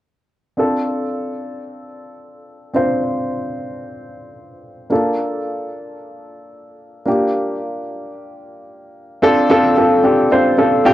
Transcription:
0, 0, Header, 1, 2, 480
1, 0, Start_track
1, 0, Key_signature, -1, "minor"
1, 0, Tempo, 540541
1, 512, Time_signature, 4, 2, 24, 8
1, 9711, End_track
2, 0, Start_track
2, 0, Title_t, "Grand piano"
2, 0, Program_c, 0, 0
2, 506, Note_on_c, 0, 60, 62
2, 512, Note_on_c, 0, 62, 58
2, 520, Note_on_c, 0, 65, 51
2, 527, Note_on_c, 0, 69, 67
2, 663, Control_c, 0, 64, 127
2, 2394, Note_off_c, 0, 60, 0
2, 2397, Note_off_c, 0, 62, 0
2, 2401, Note_off_c, 0, 65, 0
2, 2404, Note_off_c, 0, 69, 0
2, 2430, Note_on_c, 0, 60, 62
2, 2437, Note_on_c, 0, 62, 56
2, 2444, Note_on_c, 0, 65, 57
2, 2450, Note_on_c, 0, 72, 68
2, 4316, Note_off_c, 0, 60, 0
2, 4319, Note_off_c, 0, 62, 0
2, 4323, Note_off_c, 0, 65, 0
2, 4326, Note_off_c, 0, 72, 0
2, 4349, Note_on_c, 0, 58, 64
2, 4357, Note_on_c, 0, 62, 55
2, 4365, Note_on_c, 0, 65, 54
2, 4366, Control_c, 0, 64, 0
2, 4370, Note_on_c, 0, 69, 67
2, 4538, Control_c, 0, 64, 127
2, 6236, Note_off_c, 0, 58, 0
2, 6239, Note_off_c, 0, 62, 0
2, 6243, Note_off_c, 0, 65, 0
2, 6246, Note_off_c, 0, 69, 0
2, 6265, Note_on_c, 0, 58, 65
2, 6270, Note_on_c, 0, 62, 60
2, 6279, Note_on_c, 0, 65, 57
2, 6285, Control_c, 0, 64, 0
2, 6287, Note_on_c, 0, 67, 68
2, 6441, Control_c, 0, 64, 127
2, 8153, Note_off_c, 0, 58, 0
2, 8156, Note_off_c, 0, 62, 0
2, 8160, Note_off_c, 0, 65, 0
2, 8165, Note_off_c, 0, 67, 0
2, 8189, Note_on_c, 0, 60, 101
2, 8193, Note_on_c, 0, 62, 95
2, 8197, Note_on_c, 0, 65, 91
2, 8199, Note_on_c, 0, 69, 115
2, 8205, Control_c, 0, 64, 0
2, 8348, Control_c, 0, 64, 127
2, 8390, Note_off_c, 0, 60, 0
2, 8392, Note_off_c, 0, 62, 0
2, 8394, Note_off_c, 0, 65, 0
2, 8395, Note_off_c, 0, 69, 0
2, 8433, Note_on_c, 0, 60, 111
2, 8438, Note_on_c, 0, 62, 100
2, 8440, Note_on_c, 0, 65, 102
2, 8444, Note_on_c, 0, 69, 115
2, 8632, Note_off_c, 0, 60, 0
2, 8634, Note_off_c, 0, 62, 0
2, 8636, Note_off_c, 0, 65, 0
2, 8638, Note_off_c, 0, 69, 0
2, 8675, Note_on_c, 0, 60, 82
2, 8679, Note_on_c, 0, 62, 75
2, 8682, Note_on_c, 0, 65, 77
2, 8685, Note_on_c, 0, 69, 90
2, 8873, Note_off_c, 0, 60, 0
2, 8875, Note_off_c, 0, 62, 0
2, 8877, Note_off_c, 0, 65, 0
2, 8878, Note_off_c, 0, 69, 0
2, 8910, Note_on_c, 0, 60, 83
2, 8914, Note_on_c, 0, 62, 79
2, 8919, Note_on_c, 0, 65, 71
2, 8923, Note_on_c, 0, 67, 89
2, 9111, Note_off_c, 0, 60, 0
2, 9113, Note_off_c, 0, 62, 0
2, 9115, Note_off_c, 0, 65, 0
2, 9117, Note_off_c, 0, 67, 0
2, 9153, Note_on_c, 0, 60, 83
2, 9157, Note_on_c, 0, 62, 77
2, 9160, Note_on_c, 0, 65, 74
2, 9166, Note_on_c, 0, 72, 89
2, 9352, Note_off_c, 0, 60, 0
2, 9354, Note_off_c, 0, 62, 0
2, 9356, Note_off_c, 0, 65, 0
2, 9359, Note_off_c, 0, 72, 0
2, 9392, Note_on_c, 0, 60, 82
2, 9396, Note_on_c, 0, 62, 75
2, 9398, Note_on_c, 0, 65, 78
2, 9400, Note_on_c, 0, 69, 91
2, 9592, Note_off_c, 0, 60, 0
2, 9594, Note_off_c, 0, 62, 0
2, 9595, Note_off_c, 0, 65, 0
2, 9596, Note_off_c, 0, 69, 0
2, 9636, Note_on_c, 0, 60, 106
2, 9636, Note_on_c, 0, 62, 101
2, 9639, Note_on_c, 0, 65, 99
2, 9644, Note_on_c, 0, 67, 125
2, 9711, Note_off_c, 0, 60, 0
2, 9711, Note_off_c, 0, 62, 0
2, 9711, Note_off_c, 0, 65, 0
2, 9711, Note_off_c, 0, 67, 0
2, 9711, End_track
0, 0, End_of_file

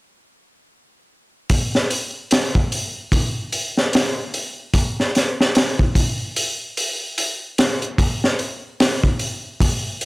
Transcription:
0, 0, Header, 1, 2, 480
1, 0, Start_track
1, 0, Tempo, 810811
1, 887, Time_signature, 4, 2, 24, 8
1, 5950, End_track
2, 0, Start_track
2, 0, Title_t, "Drums"
2, 886, Note_on_c, 9, 46, 67
2, 888, Note_on_c, 9, 36, 85
2, 945, Note_off_c, 9, 46, 0
2, 947, Note_off_c, 9, 36, 0
2, 1036, Note_on_c, 9, 38, 40
2, 1095, Note_off_c, 9, 38, 0
2, 1128, Note_on_c, 9, 46, 57
2, 1187, Note_off_c, 9, 46, 0
2, 1367, Note_on_c, 9, 46, 66
2, 1376, Note_on_c, 9, 38, 96
2, 1426, Note_off_c, 9, 46, 0
2, 1435, Note_off_c, 9, 38, 0
2, 1511, Note_on_c, 9, 36, 78
2, 1570, Note_off_c, 9, 36, 0
2, 1610, Note_on_c, 9, 46, 62
2, 1669, Note_off_c, 9, 46, 0
2, 1846, Note_on_c, 9, 36, 81
2, 1850, Note_on_c, 9, 46, 74
2, 1906, Note_off_c, 9, 36, 0
2, 1909, Note_off_c, 9, 46, 0
2, 2086, Note_on_c, 9, 46, 57
2, 2145, Note_off_c, 9, 46, 0
2, 2235, Note_on_c, 9, 38, 36
2, 2294, Note_off_c, 9, 38, 0
2, 2327, Note_on_c, 9, 46, 72
2, 2339, Note_on_c, 9, 38, 93
2, 2386, Note_off_c, 9, 46, 0
2, 2398, Note_off_c, 9, 38, 0
2, 2568, Note_on_c, 9, 46, 59
2, 2627, Note_off_c, 9, 46, 0
2, 2804, Note_on_c, 9, 36, 86
2, 2804, Note_on_c, 9, 46, 75
2, 2863, Note_off_c, 9, 36, 0
2, 2863, Note_off_c, 9, 46, 0
2, 2959, Note_on_c, 9, 38, 34
2, 3018, Note_off_c, 9, 38, 0
2, 3049, Note_on_c, 9, 46, 53
2, 3058, Note_on_c, 9, 38, 43
2, 3108, Note_off_c, 9, 46, 0
2, 3117, Note_off_c, 9, 38, 0
2, 3200, Note_on_c, 9, 38, 51
2, 3259, Note_off_c, 9, 38, 0
2, 3286, Note_on_c, 9, 46, 66
2, 3296, Note_on_c, 9, 38, 105
2, 3345, Note_off_c, 9, 46, 0
2, 3355, Note_off_c, 9, 38, 0
2, 3430, Note_on_c, 9, 36, 78
2, 3489, Note_off_c, 9, 36, 0
2, 3524, Note_on_c, 9, 36, 76
2, 3526, Note_on_c, 9, 46, 66
2, 3584, Note_off_c, 9, 36, 0
2, 3585, Note_off_c, 9, 46, 0
2, 3767, Note_on_c, 9, 46, 69
2, 3826, Note_off_c, 9, 46, 0
2, 4010, Note_on_c, 9, 46, 59
2, 4069, Note_off_c, 9, 46, 0
2, 4250, Note_on_c, 9, 46, 74
2, 4309, Note_off_c, 9, 46, 0
2, 4489, Note_on_c, 9, 46, 58
2, 4493, Note_on_c, 9, 38, 90
2, 4548, Note_off_c, 9, 46, 0
2, 4552, Note_off_c, 9, 38, 0
2, 4629, Note_on_c, 9, 42, 39
2, 4689, Note_off_c, 9, 42, 0
2, 4726, Note_on_c, 9, 36, 92
2, 4729, Note_on_c, 9, 46, 74
2, 4786, Note_off_c, 9, 36, 0
2, 4788, Note_off_c, 9, 46, 0
2, 4878, Note_on_c, 9, 38, 41
2, 4937, Note_off_c, 9, 38, 0
2, 4967, Note_on_c, 9, 46, 50
2, 5026, Note_off_c, 9, 46, 0
2, 5211, Note_on_c, 9, 46, 76
2, 5212, Note_on_c, 9, 38, 102
2, 5270, Note_off_c, 9, 46, 0
2, 5271, Note_off_c, 9, 38, 0
2, 5349, Note_on_c, 9, 36, 69
2, 5408, Note_off_c, 9, 36, 0
2, 5442, Note_on_c, 9, 46, 56
2, 5502, Note_off_c, 9, 46, 0
2, 5686, Note_on_c, 9, 36, 84
2, 5691, Note_on_c, 9, 46, 70
2, 5745, Note_off_c, 9, 36, 0
2, 5750, Note_off_c, 9, 46, 0
2, 5926, Note_on_c, 9, 46, 55
2, 5950, Note_off_c, 9, 46, 0
2, 5950, End_track
0, 0, End_of_file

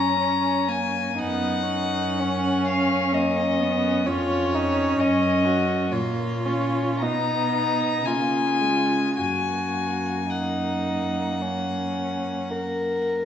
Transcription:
0, 0, Header, 1, 5, 480
1, 0, Start_track
1, 0, Key_signature, 6, "major"
1, 0, Tempo, 1000000
1, 571, Time_signature, 4, 2, 24, 8
1, 1051, Tempo, 934579
1, 2971, Tempo, 1071429
1, 3931, Tempo, 1117318
1, 5371, Tempo, 1090909
1, 6175, End_track
2, 0, Start_track
2, 0, Title_t, "Violin"
2, 0, Program_c, 0, 40
2, 0, Note_on_c, 0, 82, 65
2, 330, Note_on_c, 0, 80, 59
2, 338, Note_off_c, 0, 82, 0
2, 570, Note_on_c, 0, 78, 67
2, 577, Note_off_c, 0, 80, 0
2, 1297, Note_off_c, 0, 78, 0
2, 1299, Note_on_c, 0, 77, 64
2, 1538, Note_on_c, 0, 75, 66
2, 1545, Note_off_c, 0, 77, 0
2, 2013, Note_on_c, 0, 73, 70
2, 2021, Note_off_c, 0, 75, 0
2, 2494, Note_on_c, 0, 75, 75
2, 2501, Note_off_c, 0, 73, 0
2, 2967, Note_on_c, 0, 73, 54
2, 2974, Note_off_c, 0, 75, 0
2, 3456, Note_off_c, 0, 73, 0
2, 3458, Note_on_c, 0, 82, 65
2, 3926, Note_on_c, 0, 80, 67
2, 3932, Note_off_c, 0, 82, 0
2, 4398, Note_off_c, 0, 80, 0
2, 4400, Note_on_c, 0, 80, 51
2, 4888, Note_on_c, 0, 78, 37
2, 4895, Note_off_c, 0, 80, 0
2, 6088, Note_off_c, 0, 78, 0
2, 6175, End_track
3, 0, Start_track
3, 0, Title_t, "Violin"
3, 0, Program_c, 1, 40
3, 0, Note_on_c, 1, 61, 38
3, 567, Note_off_c, 1, 61, 0
3, 569, Note_on_c, 1, 63, 42
3, 1055, Note_on_c, 1, 61, 43
3, 1062, Note_off_c, 1, 63, 0
3, 2018, Note_off_c, 1, 61, 0
3, 2020, Note_on_c, 1, 65, 54
3, 2260, Note_on_c, 1, 63, 49
3, 2268, Note_off_c, 1, 65, 0
3, 2494, Note_on_c, 1, 61, 51
3, 2502, Note_off_c, 1, 63, 0
3, 2724, Note_on_c, 1, 66, 45
3, 2732, Note_off_c, 1, 61, 0
3, 2967, Note_on_c, 1, 65, 41
3, 2974, Note_off_c, 1, 66, 0
3, 3460, Note_on_c, 1, 63, 42
3, 3467, Note_off_c, 1, 65, 0
3, 3690, Note_off_c, 1, 63, 0
3, 3692, Note_on_c, 1, 63, 45
3, 3930, Note_on_c, 1, 65, 36
3, 3937, Note_off_c, 1, 63, 0
3, 4402, Note_off_c, 1, 65, 0
3, 4404, Note_on_c, 1, 66, 33
3, 4837, Note_off_c, 1, 66, 0
3, 4891, Note_on_c, 1, 63, 39
3, 5369, Note_on_c, 1, 61, 33
3, 5376, Note_off_c, 1, 63, 0
3, 5848, Note_on_c, 1, 70, 34
3, 5854, Note_off_c, 1, 61, 0
3, 6175, Note_off_c, 1, 70, 0
3, 6175, End_track
4, 0, Start_track
4, 0, Title_t, "Viola"
4, 0, Program_c, 2, 41
4, 0, Note_on_c, 2, 61, 43
4, 87, Note_off_c, 2, 61, 0
4, 93, Note_on_c, 2, 61, 42
4, 328, Note_on_c, 2, 58, 45
4, 335, Note_off_c, 2, 61, 0
4, 571, Note_on_c, 2, 59, 50
4, 578, Note_off_c, 2, 58, 0
4, 805, Note_off_c, 2, 59, 0
4, 808, Note_on_c, 2, 61, 52
4, 1530, Note_on_c, 2, 58, 49
4, 1538, Note_off_c, 2, 61, 0
4, 1774, Note_on_c, 2, 59, 52
4, 1782, Note_off_c, 2, 58, 0
4, 2017, Note_on_c, 2, 61, 47
4, 2024, Note_off_c, 2, 59, 0
4, 2961, Note_off_c, 2, 61, 0
4, 2964, Note_on_c, 2, 58, 44
4, 3206, Note_on_c, 2, 61, 45
4, 3213, Note_off_c, 2, 58, 0
4, 3462, Note_on_c, 2, 59, 45
4, 3469, Note_off_c, 2, 61, 0
4, 3931, Note_on_c, 2, 58, 38
4, 3937, Note_off_c, 2, 59, 0
4, 4162, Note_on_c, 2, 56, 36
4, 4169, Note_off_c, 2, 58, 0
4, 4406, Note_on_c, 2, 58, 37
4, 4412, Note_off_c, 2, 56, 0
4, 6175, Note_off_c, 2, 58, 0
4, 6175, End_track
5, 0, Start_track
5, 0, Title_t, "Cello"
5, 0, Program_c, 3, 42
5, 0, Note_on_c, 3, 42, 45
5, 551, Note_off_c, 3, 42, 0
5, 573, Note_on_c, 3, 42, 51
5, 2017, Note_on_c, 3, 41, 47
5, 2025, Note_off_c, 3, 42, 0
5, 2493, Note_off_c, 3, 41, 0
5, 2498, Note_on_c, 3, 42, 55
5, 2970, Note_on_c, 3, 46, 44
5, 2977, Note_off_c, 3, 42, 0
5, 3461, Note_on_c, 3, 47, 45
5, 3468, Note_off_c, 3, 46, 0
5, 3929, Note_off_c, 3, 47, 0
5, 3931, Note_on_c, 3, 49, 41
5, 4404, Note_on_c, 3, 42, 37
5, 4411, Note_off_c, 3, 49, 0
5, 6175, Note_off_c, 3, 42, 0
5, 6175, End_track
0, 0, End_of_file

